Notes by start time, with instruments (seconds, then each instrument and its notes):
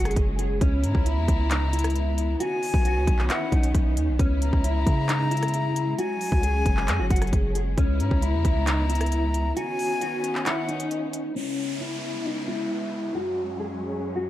Already playing: 808-style bass F#1, string section F#3 G#3 C#4, flute F#5
0.05 clean electric guitar G#4, cross-stick, closed hi-hat
0.11 closed hi-hat
0.16 808-style bass F#1, kick, closed hi-hat
0.39 clean electric guitar G#4, closed hi-hat
0.61 808-style bass C#2, string section C#3 B3 E4, clean electric guitar C#4, kick, closed hi-hat
0.84 808-style bass G#2, flute A#5, closed hi-hat
0.95 808-style bass C#2, kick
1.06 clean electric guitar E4, closed hi-hat
1.17 808-style bass E2
1.28 808-style bass C#2, kick, closed hi-hat
1.51 clean electric guitar D#4, clap, closed hi-hat
1.73 clean electric guitar E4, closed hi-hat
1.79 closed hi-hat
1.84 cross-stick, closed hi-hat
1.90 closed hi-hat
1.96 closed hi-hat
2.18 closed hi-hat
2.40 string section D#3 C#4, clean electric guitar F#4, flute G#5, closed hi-hat
2.63 open hi-hat
2.74 808-style bass B1, kick
2.85 clean electric guitar F#4, closed hi-hat
2.96 808-style bass C#2
3.07 808-style bass B1, kick, closed hi-hat
3.19 clap
3.30 clean electric guitar E4, flute F#5, clap, closed hi-hat
3.52 808-style bass B1, clean electric guitar D#4, kick, closed hi-hat
3.63 closed hi-hat
3.75 808-style bass B1, kick, closed hi-hat
3.97 808-style bass D#2, closed hi-hat
4.08 808-style bass B1
4.19 808-style bass C#2, string section C#3 G#3 E4, clean electric guitar C#4, kick, closed hi-hat
4.42 flute A#5, closed hi-hat
4.53 808-style bass C#2, kick
4.64 clean electric guitar E4, closed hi-hat
4.87 808-style bass C#3, kick, closed hi-hat
5.09 clean electric guitar D#4, clap, closed hi-hat
5.31 clean electric guitar E4, closed hi-hat
5.37 closed hi-hat
5.43 cross-stick, closed hi-hat
5.48 closed hi-hat
5.54 closed hi-hat
5.76 closed hi-hat
5.99 string section F#3 C#4, clean electric guitar F#4, flute G#5, closed hi-hat
6.21 open hi-hat
6.32 808-style bass C#2, kick
6.43 clean electric guitar G#4, closed hi-hat
6.66 808-style bass F#1, kick, closed hi-hat
6.77 clap
6.88 808-style bass F#2, clap, closed hi-hat
6.99 808-style bass F#1, clean electric guitar F#4
7.10 808-style bass F#1, flute F#5, kick, closed hi-hat
7.16 closed hi-hat
7.22 clean electric guitar G#4, cross-stick, closed hi-hat
7.27 closed hi-hat
7.33 808-style bass F#1, kick, closed hi-hat
7.55 clean electric guitar G#4, closed hi-hat
7.78 808-style bass C#2, string section C#3 B3 E4, clean electric guitar C#4, kick, closed hi-hat
8.00 808-style bass G#2, flute A#5, closed hi-hat
8.11 808-style bass C#2, kick
8.22 clean electric guitar E4, closed hi-hat
8.34 808-style bass E2
8.45 808-style bass C#2, kick, closed hi-hat
8.67 clean electric guitar D#4, clap, closed hi-hat
8.89 clean electric guitar E4, closed hi-hat
8.95 closed hi-hat
9.01 cross-stick, closed hi-hat
9.06 closed hi-hat
9.12 closed hi-hat
9.34 closed hi-hat
9.57 string section D#3 B3 C#4, clean electric guitar F#4, flute G#5, closed hi-hat
9.79 open hi-hat
10.01 clean electric guitar F#4, closed hi-hat
10.24 closed hi-hat
10.35 clap
10.46 clean electric guitar E4, flute F#5, clap, closed hi-hat
10.69 clean electric guitar D#4, closed hi-hat
10.80 closed hi-hat
10.91 closed hi-hat
11.13 closed hi-hat
11.36 string section C#3 G#3 B3 E4, clean electric guitar C#4, downlifter
11.81 clean electric guitar E4
12.25 clean electric guitar D#4
12.48 clean electric guitar E4
13.15 string section F#2 F#3 C#4, clean electric guitar F#4
13.60 clean electric guitar G#4
14.16 clean electric guitar F#4